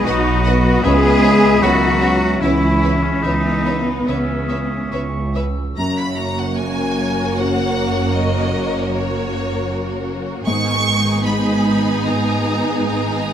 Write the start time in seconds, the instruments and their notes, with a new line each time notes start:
Already playing: felt piano D#4 F#4
0.05 double bass section B1, french horn section F#3, viola section D#4, oboe F#4, cello section F#4, violin section B4 D#5 F#5, clarinet D#5, flute B5
0.44 viola section B3, violin section B4 D#5 F#5
0.83 double bass section C#2, felt piano C#2, french horn section G#3, cello section G#4, oboe G#4, violin section B4 C#5 E5, clarinet E5, flute B5
1.23 violin section B4 C#5 E5
1.62 double bass section C#2, viola section D#3, french horn section F#3, felt piano B3, oboe F#4, cello section F#4, violin section B4 C#5 E5
2.01 viola section C#4, violin section B4 C#5 E5
2.41 double bass section C#2, french horn section E3, felt piano E3 C#4, oboe E4, cello section E4, violin section B4 C#5 E5, clarinet E5, flute B5
2.81 violin section B4 C#5 E5
3.03 french horn section C#3, oboe C#4, cello section C#4
3.23 double bass section C#2, french horn section E3, viola section B3, oboe D#4, cello section D#4, violin section B4 C#5 E5
3.66 violin section B4 C#5 E5
4.06 double bass section C#2, french horn section C#3, cello section C#4, oboe C#4, violin section B4 C#5 E5, clarinet E5, flute E6
4.48 violin section B4 C#5 E5, flute D#6
4.90 double bass section C#2, violin section B4 C#5 E5, flute C#6
5.35 violin section B4 C#5 E5, flute E6
5.77 double bass section F#1, cello section F#2, felt piano F#2, viola section A#3 F#4, french horn section C#4 A#4, violin section A#4 C#5 A#5
5.98 violin section B5
6.16 violin section A#5
6.38 violin section F#5
6.56 felt piano A#3, violin section G#5
7.38 felt piano C#4 F#4, violin section F#5
8.14 violin section D#5
8.93 violin section C#5
10.46 double bass section G#1, cello section G#2, felt piano G#2, viola section B3 D#4, french horn section D#4, violin section G#4 G#5 C#6
11.25 french horn section G#3, felt piano G#3, violin section B5
12.06 felt piano B3 D#4, violin section A#5
12.87 violin section A#5